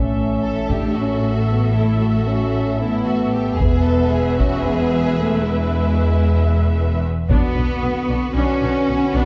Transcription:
Already playing: A1 A2 C#4 A4 E5
0.43 A4
0.69 D4 G4, taiko
0.96 C#4 F#4
1.49 B3
1.74 A3 E4
2.01 F#4
2.28 C#4
2.80 B3 E4
3.06 F#4
3.32 G4
3.58 E1 E2 B3 G#4 B4 E5, taiko
3.84 A4
4.11 G#4
4.38 C#4 F#4, taiko
4.63 B3 G#4
5.18 A3
5.43 G#3 E4
7.29 B1 D3 B3 D4 F#4 B4, taiko
7.56 B1 D4
7.83 B1 B3
8.10 B1 D4
8.35 B1 C#4 D4
8.62 B1 D4
8.89 B1 B3
9.15 B1 B3 D4

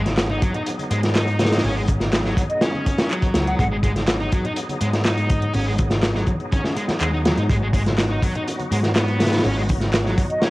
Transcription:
Already playing: G#1 F#3 B3 D#4 G#4
0.06 snare, closed hi-hat, high conga
0.18 snare, clap, closed hi-hat
0.30 D#4, muted conga
0.42 F#3, kick, closed hi-hat
0.54 D#4, closed hi-hat, low conga
0.66 closed hi-hat
0.79 closed hi-hat, high conga
0.91 G#2 G#3, closed hi-hat
1.03 snare, closed hi-hat
1.15 D#4, snare, clap, closed hi-hat
1.27 closed hi-hat
1.39 snare, closed hi-hat, high conga
1.45 snare, closed hi-hat
1.51 snare, closed hi-hat
1.58 snare, closed hi-hat
1.63 G#1 C#4, closed hi-hat, open hi-hat, low conga
1.76 G#3
1.87 kick, closed hi-hat, low conga
2.00 snare, closed hi-hat, high conga
2.13 snare, clap, closed hi-hat
2.25 F#3, snare
2.37 kick, closed hi-hat
2.50 D#5, closed hi-hat
2.61 C#4, snare, closed hi-hat
2.74 high conga
2.86 kick, closed hi-hat
2.98 snare, closed hi-hat
3.11 F#3, clap, closed hi-hat
3.22 kick, closed hi-hat
3.34 C#2, snare, closed hi-hat, high conga
3.47 F#5, closed hi-hat
3.59 G#1 G#3 F#5, kick, closed hi-hat, low conga
3.72 G#3
3.83 G#3, kick, closed hi-hat, low conga
3.96 snare, closed hi-hat, high conga
4.07 snare, clap, closed hi-hat
4.20 D#4, muted conga
4.32 F#3, kick, closed hi-hat
4.44 D#4, closed hi-hat, low conga
4.56 closed hi-hat
4.69 closed hi-hat, high conga
4.81 G#2 G#3, closed hi-hat
4.93 snare, closed hi-hat
5.05 D#4, snare, clap, closed hi-hat
5.18 closed hi-hat
5.30 kick, closed hi-hat, high conga
5.42 closed hi-hat
5.53 G#1 C#4, closed hi-hat, open hi-hat, low conga
5.67 G#3
5.78 kick, closed hi-hat, low conga
5.90 snare, closed hi-hat, high conga
6.03 snare, clap, closed hi-hat
6.15 F#3, snare
6.26 kick, closed hi-hat
6.40 closed hi-hat
6.52 C#4, kick, closed hi-hat
6.64 snare, high conga
6.76 G#3, closed hi-hat
6.88 muted picked electric bass stroke, snare, closed hi-hat
7.00 D#2 G#3, clap, closed hi-hat
7.13 D#4
7.25 F#3, snare, closed hi-hat, high conga
7.37 G#2 D#4, closed hi-hat
7.49 G#1 G#3 F#4, kick, closed hi-hat, low conga
7.62 G#3
7.73 G#3, kick, closed hi-hat, open hi-hat, low conga
7.86 snare, closed hi-hat, high conga
7.98 snare, clap, closed hi-hat
8.10 D#4, muted conga
8.22 F#3, kick, closed hi-hat, open hi-hat
8.35 D#4, closed hi-hat, low conga
8.47 closed hi-hat
8.59 closed hi-hat, high conga
8.72 G#2 G#3, closed hi-hat, open hi-hat
8.83 snare, closed hi-hat
8.95 B3, snare, clap, closed hi-hat
9.08 closed hi-hat
9.20 snare, closed hi-hat, open hi-hat, high conga
9.26 snare, closed hi-hat
9.32 snare, closed hi-hat
9.38 snare, closed hi-hat
9.44 G#1 C#4, closed hi-hat, open hi-hat, low conga
9.57 G#3
9.69 kick, closed hi-hat, open hi-hat, low conga
9.81 snare, closed hi-hat, high conga
9.93 snare, clap, closed hi-hat
10.06 F#3, snare
10.18 kick, closed hi-hat, open hi-hat
10.30 D#5, closed hi-hat
10.42 C#4, snare, closed hi-hat

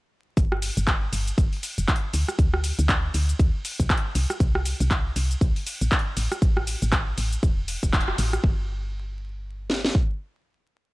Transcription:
0.37 G1, kick, closed hi-hat, shaker
0.52 cross-stick
0.62 open hi-hat, ride, shaker
0.77 G1, closed hi-hat, shaker
0.87 kick, clap, closed hi-hat, shaker
1.13 G1, open hi-hat, ride, shaker
1.28 closed hi-hat, shaker
1.38 G1, kick, closed hi-hat, shaker
1.53 open hi-hat
1.63 open hi-hat, ride, shaker
1.78 F1, closed hi-hat, shaker
1.88 kick, clap, closed hi-hat, shaker
1.96 closed hi-hat
2.13 D2, open hi-hat, ride, shaker
2.28 cross-stick, closed hi-hat, shaker
2.39 D2, kick, closed hi-hat, shaker
2.54 cross-stick
2.64 open hi-hat, ride, shaker
2.79 D2, closed hi-hat, shaker
2.89 kick, clap, closed hi-hat, shaker
3.14 D2, open hi-hat, ride, shaker
3.29 closed hi-hat, shaker
3.39 D2, kick, closed hi-hat, shaker
3.65 open hi-hat, ride, shaker
3.80 C2, kick, closed hi-hat, shaker
3.90 kick, clap, closed hi-hat, shaker
3.97 closed hi-hat
4.15 C2, open hi-hat, ride, shaker
4.30 cross-stick, closed hi-hat, shaker
4.40 C2, kick, closed hi-hat, shaker
4.55 cross-stick
4.66 open hi-hat, ride, shaker
4.80 C2, closed hi-hat, shaker
4.91 kick, clap, closed hi-hat, shaker
5.16 C2, open hi-hat, ride, shaker
5.31 closed hi-hat, shaker
5.41 C2, kick, closed hi-hat, shaker
5.56 open hi-hat
5.67 open hi-hat, ride, shaker
5.81 A#1, closed hi-hat, shaker
5.92 kick, clap, closed hi-hat, shaker
5.99 closed hi-hat
6.17 A1, open hi-hat, ride, shaker
6.32 cross-stick, closed hi-hat, shaker
6.42 A1, kick, closed hi-hat, shaker
6.57 cross-stick
6.67 open hi-hat, ride, shaker
6.82 A1, closed hi-hat, shaker
6.92 kick, clap, closed hi-hat, shaker
7.18 A1, open hi-hat, ride, shaker
7.32 closed hi-hat, shaker
7.43 E1, kick, closed hi-hat, shaker
7.68 open hi-hat, ride, shaker
7.83 E1, kick, closed hi-hat, shaker
7.93 kick, clap, closed hi-hat, shaker
8.01 closed hi-hat
8.08 cross-stick
8.18 A1, open hi-hat, ride, shaker
8.33 cross-stick, closed hi-hat, shaker
8.44 G1, kick
9.70 snare
9.85 snare
9.95 kick

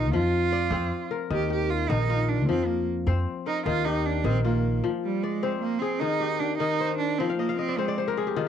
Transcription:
Already playing: A#1 D#3 C4 D#4 F4 G4
0.13 F2 F3 F4
0.52 D5
0.71 F2 C4 C5
1.11 A#4
1.30 D#2 D#3 G4
1.50 G4
1.70 F4
1.89 A#1 D#3 D#4
2.09 F4
2.28 D4
2.48 F2 F3 C4
2.67 A#3
3.07 F2 C4 C5
3.46 D#4 A#4
3.66 D#2 D#3 F4
3.85 D#4 G4
4.06 D4
4.24 A#1 D#3 C4
4.45 A#3 F4
4.84 F3
5.04 G3
5.23 G#3 D5
5.43 C4 C5
5.61 A#3
5.79 C4 G#4
6.00 D#3 D#4
6.20 G4
6.40 D4 G4
6.58 D#3 D#4
6.80 C5
6.98 D4
7.18 F3 C4 G5
7.29 F5
7.38 A#3 D#5
7.49 F5
7.58 C4 D#5
7.68 D5
7.78 G#3 C4 C5
7.88 D5
7.98 C5
8.07 A#4
8.17 G#4
8.27 G4
8.36 D#3 F4

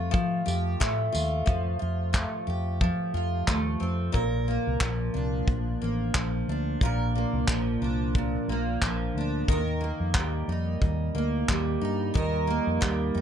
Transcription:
Already playing: F2 F3 A3 F4
0.11 F3, kick
0.46 F2 G4, tambourine
0.80 A2 A3, kick, clap
1.12 D#2 F4, tambourine
1.46 F2 F3, kick
1.79 F2 F4
2.13 A3, kick, clap
2.47 F2 G4
2.81 F3, kick
3.14 F2 F4
3.47 D#2 A3, kick, clap
3.80 F2 C4
4.12 A#1 A#2 A#4, kick
4.48 A#3
4.67 C2
4.81 A#1 F3, kick, clap
5.14 C2 D4
5.47 A#1, kick
5.82 A1 A#3
6.15 A#1 F3, kick, clap
6.48 D2 D4
6.81 A#1 A#2 A#4, kick
7.15 A#3
7.33 C2
7.48 A#1 F3, kick, clap
7.82 C2 D4
8.15 A#2, kick
8.48 A#1 A#3
8.82 A#1 F3, kick, clap
9.15 D2 D4
9.48 D#2 D#3 A#4, kick
9.81 A#3
10.00 F2
10.14 D#2 G3, kick, clap
10.48 F2 D#4
10.81 D#2, kick
11.15 D2 A#3
11.49 D#2 G3, kick, clap
11.81 G2 D#4
12.14 D#2 D#3 A#4, kick
12.47 A#3
12.67 F2
12.81 D#2 G3, kick, clap
13.14 F2 D#4

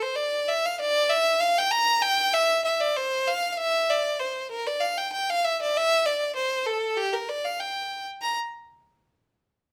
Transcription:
0.02 C5
0.16 D5
0.48 E5
0.65 F5
0.80 D5
1.09 E5
1.40 F5
1.58 G5
1.71 A#5
2.02 G5
2.33 E5
2.65 E5
2.80 D5
2.97 C5
3.28 F5
3.52 F5
3.57 E5
3.89 D5
4.19 C5
4.51 A#4
4.67 D5
4.80 F5
4.97 G5
5.12 G5
5.30 F5
5.44 E5
5.62 D5
5.77 E5
6.05 D5
6.35 C5
6.66 A4
6.97 G4
7.13 A#4
7.29 D5
7.45 F5
7.60 G5
8.21 A#5

